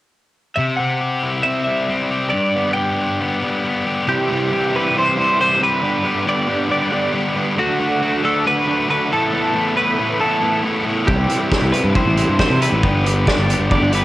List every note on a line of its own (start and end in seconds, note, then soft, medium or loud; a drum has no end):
0.56 1.67 C3 medium
0.56 0.76 E5 medium
0.77 1.44 C4 medium
0.77 1.43 F#5 medium
1.01 2.10 G4 medium
1.23 2.33 E4 medium
1.43 1.88 C4 medium
1.43 1.63 E5 medium
1.64 3.42 G3 medium
1.64 2.29 E5 medium
1.89 2.33 C4 medium
2.11 2.76 G4 medium
2.30 3.42 G2 medium
2.30 2.73 D5 medium
2.55 3.19 B3 medium
2.73 3.85 G4 medium
2.73 3.37 G5 medium
2.98 4.08 D4 medium
3.20 3.63 B3 medium
3.42 4.08 G3 medium
3.65 4.08 B3 medium
3.86 4.08 G4 medium
4.08 4.28 C3 medium
4.08 4.29 E3 medium
4.08 4.30 G3 medium
4.08 4.30 C4 medium
4.08 4.29 E4 medium
4.08 4.76 G4 medium
4.08 4.31 G4 medium
4.30 4.51 C3 medium
4.30 4.51 E3 medium
4.30 4.52 G3 medium
4.30 4.52 C4 medium
4.30 4.51 E4 medium
4.30 4.53 G4 medium
4.52 4.73 C3 medium
4.52 4.74 E3 medium
4.52 4.75 G3 medium
4.52 4.74 C4 medium
4.52 4.73 E4 medium
4.52 4.75 G4 medium
4.74 4.95 C3 medium
4.74 4.95 E3 medium
4.74 4.96 G3 medium
4.74 4.96 C4 medium
4.74 4.94 E4 medium
4.74 4.97 G4 medium
4.74 4.97 B4 medium
4.95 5.17 C3 medium
4.95 5.17 E3 medium
4.95 5.17 G3 medium
4.95 5.18 C4 medium
4.95 5.16 E4 medium
4.95 5.18 G4 medium
4.95 5.40 C5 medium
5.17 5.38 C3 medium
5.17 5.39 E3 medium
5.17 5.39 G3 medium
5.17 5.39 C4 medium
5.17 5.39 E4 medium
5.17 5.40 G4 medium
5.39 5.59 C3 medium
5.39 5.60 E3 medium
5.39 5.61 G3 medium
5.39 5.61 C4 medium
5.39 5.61 E4 medium
5.39 5.62 G4 medium
5.39 5.63 C5 medium
5.61 5.81 C3 medium
5.61 5.82 E3 medium
5.61 5.82 G3 medium
5.61 5.82 C4 medium
5.61 5.82 E4 medium
5.61 5.82 G4 medium
5.61 6.24 B4 medium
5.83 6.03 G2 medium
5.83 6.04 D3 medium
5.83 6.04 G3 medium
5.83 6.04 B3 medium
5.83 6.05 D4 medium
5.83 6.05 G4 medium
6.04 6.25 G2 medium
6.04 6.25 D3 medium
6.04 6.26 G3 medium
6.04 6.26 B3 medium
6.04 6.27 D4 medium
6.04 6.27 G4 medium
6.26 6.46 G2 medium
6.26 6.47 D3 medium
6.26 6.47 G3 medium
6.26 6.48 B3 medium
6.26 6.48 D4 medium
6.26 6.48 G4 medium
6.26 6.70 D5 medium
6.47 6.68 G2 medium
6.47 6.69 D3 medium
6.47 6.69 G3 medium
6.47 6.69 B3 medium
6.47 6.70 D4 medium
6.47 6.70 G4 medium
6.69 6.90 G2 medium
6.69 6.91 D3 medium
6.69 6.91 G3 medium
6.69 6.91 B3 medium
6.69 6.92 D4 medium
6.69 6.92 G4 medium
6.69 7.12 D5 medium
6.91 7.12 G2 medium
6.91 7.12 D3 medium
6.91 7.13 G3 medium
6.91 7.13 B3 medium
6.91 7.13 D4 medium
6.91 7.14 G4 medium
7.13 7.34 G2 medium
7.13 7.34 D3 medium
7.13 7.34 G3 medium
7.13 7.35 B3 medium
7.13 7.35 D4 medium
7.13 7.35 G4 medium
7.35 7.56 G2 medium
7.35 7.56 D3 medium
7.35 7.56 G3 medium
7.35 7.57 B3 medium
7.35 7.57 D4 medium
7.35 7.57 G4 medium
7.57 7.79 D3 medium
7.57 7.78 F#3 medium
7.57 7.80 A3 medium
7.57 7.80 D4 medium
7.57 7.80 F#4 medium
7.57 8.26 F#4 medium
7.57 7.79 A4 loud
7.79 8.01 D3 medium
7.79 8.00 F#3 medium
7.79 8.02 A3 medium
7.79 8.01 D4 medium
7.79 8.02 F#4 medium
7.79 8.02 A4 medium
8.01 8.23 D3 medium
8.01 8.21 F#3 medium
8.01 8.24 A3 medium
8.01 8.24 D4 medium
8.01 8.24 F#4 medium
8.01 8.23 A4 medium
8.22 8.45 D3 medium
8.22 8.44 F#3 medium
8.22 8.46 A3 medium
8.22 8.46 D4 medium
8.22 8.46 F#4 medium
8.22 8.45 A4 medium
8.22 8.47 A4 medium
8.45 8.66 D3 medium
8.45 8.66 F#3 medium
8.45 8.67 A3 medium
8.45 8.67 D4 medium
8.45 8.68 F#4 medium
8.45 8.66 A4 medium
8.45 8.87 B4 medium
8.67 8.88 D3 medium
8.67 8.88 F#3 medium
8.67 8.88 A3 medium
8.67 8.88 D4 medium
8.67 8.89 F#4 medium
8.67 8.89 A4 medium
8.89 9.09 D3 medium
8.89 9.10 F#3 medium
8.89 9.10 A3 medium
8.89 9.10 D4 medium
8.89 9.10 F#4 medium
8.89 9.10 A4 medium
8.89 9.12 B4 medium
9.12 9.32 A2 medium
9.12 9.33 E3 medium
9.12 9.33 A3 medium
9.12 9.33 B3 medium
9.12 9.34 E4 medium
9.12 9.32 A4 medium
9.12 9.77 A4 medium
9.33 9.53 A2 medium
9.33 9.54 E3 medium
9.33 9.54 A3 medium
9.33 9.55 B3 medium
9.33 9.56 E4 medium
9.33 9.54 A4 medium
9.54 9.75 A2 medium
9.54 9.77 E3 medium
9.54 9.77 A3 medium
9.54 9.77 B3 medium
9.54 9.78 E4 medium
9.54 9.76 A4 medium
9.77 9.97 A2 medium
9.77 9.98 E3 medium
9.77 9.98 A3 medium
9.77 9.98 B3 medium
9.77 9.99 E4 medium
9.77 9.97 A4 medium
9.77 10.20 B4 medium
9.98 10.19 A2 medium
9.98 10.19 E3 medium
9.98 10.20 A3 medium
9.98 10.20 B3 medium
9.98 10.20 E4 medium
9.98 10.19 A4 medium
10.20 10.41 A2 medium
10.20 10.41 E3 medium
10.20 10.42 A3 medium
10.20 10.42 B3 medium
10.20 10.42 E4 medium
10.20 10.41 A4 medium
10.20 10.61 A4 medium
10.42 10.62 A2 medium
10.42 10.63 E3 medium
10.42 10.63 A3 medium
10.42 10.63 B3 medium
10.42 10.64 E4 medium
10.42 10.63 A4 medium
10.63 10.84 A2 medium
10.63 10.84 E3 medium
10.63 10.85 A3 medium
10.63 10.85 B3 medium
10.63 10.85 E4 medium
10.63 10.85 A4 medium
10.85 11.06 A2 medium
10.85 11.06 E3 medium
10.85 11.07 A3 medium
10.85 11.07 B3 medium
10.85 11.07 E4 medium
10.85 11.07 A4 medium
11.06 11.25 C2 medium
11.06 11.28 C3 medium
11.06 11.28 E3 medium
11.06 11.29 G3 medium
11.06 11.28 C4 medium
11.06 11.29 E4 medium
11.06 11.75 G4 medium
11.06 11.30 G4 medium
11.06 kick medium
11.29 11.49 C3 medium
11.29 11.49 E3 medium
11.29 11.51 G3 medium
11.29 11.50 C4 medium
11.29 11.51 E4 medium
11.29 11.52 G4 medium
11.29 closed hi-hat medium
11.50 11.71 C3 medium
11.50 11.72 E3 medium
11.50 11.73 G3 medium
11.50 11.72 C4 medium
11.50 11.73 E4 medium
11.50 11.74 G4 medium
11.50 kick medium
11.50 snare medium
11.62 11.71 C2 medium
11.72 11.92 C3 medium
11.72 11.93 E3 medium
11.72 11.93 G3 medium
11.72 11.94 C4 medium
11.72 11.94 E4 medium
11.72 11.95 G4 medium
11.72 11.95 B4 medium
11.72 closed hi-hat medium
11.84 11.93 G2 medium
11.93 12.15 C3 medium
11.93 12.15 E3 medium
11.93 12.16 G3 medium
11.93 12.16 C4 medium
11.93 12.16 E4 medium
11.93 12.17 G4 medium
11.93 12.36 C5 medium
11.93 kick medium
12.06 12.23 A1 medium
12.16 12.37 C3 medium
12.16 12.37 E3 medium
12.16 12.38 G3 medium
12.16 12.38 C4 medium
12.16 12.38 E4 medium
12.16 12.39 G4 medium
12.16 closed hi-hat medium
12.28 12.37 G2 medium
12.38 12.59 C3 medium
12.38 12.59 E3 medium
12.38 12.60 G3 medium
12.38 12.60 C4 medium
12.38 12.60 E4 medium
12.38 12.60 G4 medium
12.38 12.62 C5 medium
12.38 kick medium
12.38 snare medium
12.50 12.67 C3 medium
12.60 12.81 C3 medium
12.60 12.81 E3 medium
12.60 12.81 G3 medium
12.60 12.82 C4 medium
12.60 12.82 E4 medium
12.60 12.82 G4 medium
12.60 13.28 B4 medium
12.60 closed hi-hat medium
12.72 12.81 A1 medium
12.82 13.26 G1 medium
12.82 13.03 G2 medium
12.82 13.04 D3 medium
12.82 13.04 G3 medium
12.82 13.05 B3 medium
12.82 13.06 D4 medium
12.82 13.05 G4 medium
12.82 kick medium
13.05 13.26 G2 medium
13.05 13.26 D3 medium
13.05 13.26 G3 medium
13.05 13.27 B3 medium
13.05 13.28 D4 medium
13.05 13.27 G4 medium
13.05 closed hi-hat medium
13.27 13.47 G2 medium
13.27 13.48 D3 medium
13.27 13.48 G3 medium
13.27 13.49 B3 medium
13.27 13.50 D4 medium
13.27 13.49 G4 medium
13.27 13.70 D5 medium
13.27 kick medium
13.27 snare medium
13.37 13.54 G1 medium
13.49 13.69 G2 medium
13.49 13.69 D3 medium
13.49 13.70 G3 medium
13.49 13.70 B3 medium
13.49 13.71 D4 medium
13.49 13.71 G4 medium
13.49 closed hi-hat medium
13.60 13.77 G1 medium
13.70 13.91 G2 medium
13.70 13.92 D3 medium
13.70 13.92 G3 medium
13.70 13.93 B3 medium
13.70 13.93 D4 medium
13.70 13.93 G4 medium
13.70 13.94 D5 medium
13.70 kick medium
13.81 14.05 G1 medium
13.92 14.05 G2 medium
13.92 14.05 D3 medium
13.92 14.05 G3 medium
13.92 14.05 B3 medium
13.92 14.05 D4 medium
13.92 14.05 G4 medium
13.92 14.05 B4 medium
13.92 closed hi-hat medium